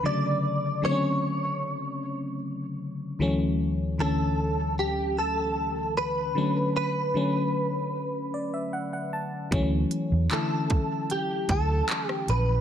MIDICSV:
0, 0, Header, 1, 5, 480
1, 0, Start_track
1, 0, Key_signature, 2, "major"
1, 0, Tempo, 789474
1, 28, Time_signature, 4, 2, 24, 8
1, 7665, End_track
2, 0, Start_track
2, 0, Title_t, "Clean electric guitar"
2, 0, Program_c, 0, 27
2, 36, Note_on_c, 0, 74, 117
2, 513, Note_off_c, 0, 74, 0
2, 516, Note_on_c, 0, 73, 100
2, 1447, Note_off_c, 0, 73, 0
2, 2435, Note_on_c, 0, 69, 96
2, 2887, Note_off_c, 0, 69, 0
2, 2913, Note_on_c, 0, 67, 100
2, 3134, Note_off_c, 0, 67, 0
2, 3153, Note_on_c, 0, 69, 98
2, 3606, Note_off_c, 0, 69, 0
2, 3632, Note_on_c, 0, 71, 108
2, 4106, Note_off_c, 0, 71, 0
2, 4113, Note_on_c, 0, 71, 98
2, 5526, Note_off_c, 0, 71, 0
2, 6277, Note_on_c, 0, 69, 89
2, 6757, Note_on_c, 0, 67, 94
2, 6767, Note_off_c, 0, 69, 0
2, 6999, Note_on_c, 0, 69, 99
2, 7000, Note_off_c, 0, 67, 0
2, 7357, Note_off_c, 0, 69, 0
2, 7357, Note_on_c, 0, 67, 99
2, 7474, Note_off_c, 0, 67, 0
2, 7477, Note_on_c, 0, 71, 95
2, 7665, Note_off_c, 0, 71, 0
2, 7665, End_track
3, 0, Start_track
3, 0, Title_t, "FM electric piano"
3, 0, Program_c, 1, 5
3, 0, Control_c, 1, 64, 127
3, 21, Note_on_c, 1, 50, 79
3, 26, Note_on_c, 1, 54, 70
3, 31, Note_on_c, 1, 57, 71
3, 36, Control_c, 1, 64, 0
3, 37, Note_on_c, 1, 49, 86
3, 145, Control_c, 1, 64, 127
3, 369, Note_off_c, 1, 50, 0
3, 371, Note_off_c, 1, 54, 0
3, 374, Note_off_c, 1, 57, 0
3, 376, Note_off_c, 1, 49, 0
3, 498, Note_on_c, 1, 50, 79
3, 504, Note_on_c, 1, 54, 75
3, 509, Note_on_c, 1, 57, 72
3, 516, Note_on_c, 1, 60, 65
3, 551, Note_off_c, 1, 60, 0
3, 555, Note_on_c, 1, 61, 89
3, 1191, Note_off_c, 1, 50, 0
3, 1195, Note_off_c, 1, 54, 0
3, 1197, Note_off_c, 1, 57, 0
3, 1220, Note_off_c, 1, 61, 0
3, 1941, Note_on_c, 1, 38, 89
3, 1945, Note_on_c, 1, 52, 86
3, 1950, Note_on_c, 1, 54, 89
3, 1953, Note_on_c, 1, 57, 87
3, 1956, Control_c, 1, 64, 0
3, 1958, Note_on_c, 1, 61, 100
3, 2067, Control_c, 1, 64, 127
3, 2289, Note_off_c, 1, 38, 0
3, 2291, Note_off_c, 1, 52, 0
3, 2293, Note_off_c, 1, 54, 0
3, 2295, Note_off_c, 1, 57, 0
3, 2297, Note_off_c, 1, 61, 0
3, 2420, Note_on_c, 1, 38, 75
3, 2424, Note_on_c, 1, 52, 73
3, 2428, Note_on_c, 1, 50, 72
3, 2433, Note_on_c, 1, 57, 72
3, 2437, Note_on_c, 1, 61, 85
3, 3113, Note_off_c, 1, 38, 0
3, 3115, Note_off_c, 1, 52, 0
3, 3117, Note_off_c, 1, 50, 0
3, 3119, Note_off_c, 1, 57, 0
3, 3121, Note_off_c, 1, 61, 0
3, 3861, Note_on_c, 1, 50, 80
3, 3868, Note_on_c, 1, 54, 73
3, 3873, Note_on_c, 1, 57, 72
3, 3876, Control_c, 1, 64, 0
3, 3878, Note_on_c, 1, 61, 84
3, 3991, Control_c, 1, 64, 127
3, 4209, Note_off_c, 1, 50, 0
3, 4212, Note_off_c, 1, 54, 0
3, 4215, Note_off_c, 1, 57, 0
3, 4217, Note_off_c, 1, 61, 0
3, 4341, Note_on_c, 1, 50, 72
3, 4348, Note_on_c, 1, 54, 69
3, 4353, Note_on_c, 1, 57, 70
3, 4359, Note_on_c, 1, 61, 87
3, 5033, Note_off_c, 1, 50, 0
3, 5036, Note_off_c, 1, 54, 0
3, 5039, Note_off_c, 1, 57, 0
3, 5042, Note_off_c, 1, 61, 0
3, 5070, Note_on_c, 1, 74, 72
3, 5181, Note_off_c, 1, 74, 0
3, 5190, Note_on_c, 1, 76, 71
3, 5301, Note_off_c, 1, 76, 0
3, 5309, Note_on_c, 1, 78, 78
3, 5420, Note_off_c, 1, 78, 0
3, 5431, Note_on_c, 1, 78, 76
3, 5541, Note_off_c, 1, 78, 0
3, 5551, Note_on_c, 1, 81, 78
3, 5773, Note_off_c, 1, 81, 0
3, 5783, Note_on_c, 1, 52, 93
3, 5788, Note_on_c, 1, 54, 89
3, 5793, Note_on_c, 1, 57, 84
3, 5795, Control_c, 1, 64, 0
3, 5799, Note_on_c, 1, 61, 104
3, 5915, Control_c, 1, 64, 127
3, 6130, Note_off_c, 1, 52, 0
3, 6132, Note_off_c, 1, 54, 0
3, 6135, Note_off_c, 1, 57, 0
3, 6137, Note_off_c, 1, 61, 0
3, 6263, Note_on_c, 1, 52, 75
3, 6269, Note_on_c, 1, 50, 75
3, 6274, Note_on_c, 1, 57, 70
3, 6280, Note_on_c, 1, 64, 82
3, 6954, Note_off_c, 1, 52, 0
3, 6957, Note_off_c, 1, 50, 0
3, 6959, Note_off_c, 1, 57, 0
3, 6963, Note_off_c, 1, 64, 0
3, 7665, End_track
4, 0, Start_track
4, 0, Title_t, "Fingered electric bass"
4, 0, Program_c, 2, 33
4, 5790, Note_on_c, 2, 38, 107
4, 5976, Note_off_c, 2, 38, 0
4, 6151, Note_on_c, 2, 40, 90
4, 6243, Note_off_c, 2, 40, 0
4, 6988, Note_on_c, 2, 38, 95
4, 7175, Note_off_c, 2, 38, 0
4, 7471, Note_on_c, 2, 34, 91
4, 7657, Note_off_c, 2, 34, 0
4, 7665, End_track
5, 0, Start_track
5, 0, Title_t, "Drums"
5, 5789, Note_on_c, 9, 36, 108
5, 5789, Note_on_c, 9, 42, 70
5, 5850, Note_off_c, 9, 36, 0
5, 5850, Note_off_c, 9, 42, 0
5, 6025, Note_on_c, 9, 42, 65
5, 6086, Note_off_c, 9, 42, 0
5, 6268, Note_on_c, 9, 42, 77
5, 6270, Note_on_c, 9, 39, 127
5, 6329, Note_off_c, 9, 42, 0
5, 6331, Note_off_c, 9, 39, 0
5, 6505, Note_on_c, 9, 42, 71
5, 6508, Note_on_c, 9, 36, 104
5, 6565, Note_off_c, 9, 42, 0
5, 6569, Note_off_c, 9, 36, 0
5, 6748, Note_on_c, 9, 42, 74
5, 6809, Note_off_c, 9, 42, 0
5, 6985, Note_on_c, 9, 42, 75
5, 6987, Note_on_c, 9, 36, 101
5, 7046, Note_off_c, 9, 42, 0
5, 7048, Note_off_c, 9, 36, 0
5, 7226, Note_on_c, 9, 42, 74
5, 7232, Note_on_c, 9, 39, 119
5, 7287, Note_off_c, 9, 42, 0
5, 7293, Note_off_c, 9, 39, 0
5, 7352, Note_on_c, 9, 37, 92
5, 7413, Note_off_c, 9, 37, 0
5, 7469, Note_on_c, 9, 42, 69
5, 7529, Note_off_c, 9, 42, 0
5, 7665, End_track
0, 0, End_of_file